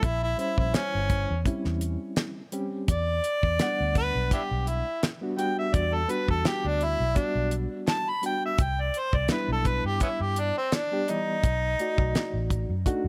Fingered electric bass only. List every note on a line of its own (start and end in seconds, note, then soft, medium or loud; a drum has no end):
0.03 0.33 A#1 loud
0.58 0.72 A#1 medium
0.95 1.25 G1 medium
1.31 1.44 E2 medium
1.46 muted fingered electric bass stroke soft
1.66 1.96 E2 medium
2.88 3.19 E2 loud
3.43 3.57 E2 medium
3.80 4.10 D2 medium
4.15 4.29 B1 medium
4.31 muted fingered electric bass stroke soft
4.51 4.81 B1 medium
5.74 6.04 E2 loud
6.28 6.42 E2 medium
6.64 6.95 D2 medium
7.00 7.14 B1 medium
7.35 7.66 B1 medium
8.59 8.89 C2 medium
9.13 9.27 C2 medium
9.48 9.79 B1 medium
9.84 9.98 G2 medium
10.20 10.51 G2 medium
11.44 11.74 B1 medium
11.98 12.12 B1 loud
12.34 12.64 A1 medium
12.69 12.83 F#2 medium
13.04 13.08 F#2 medium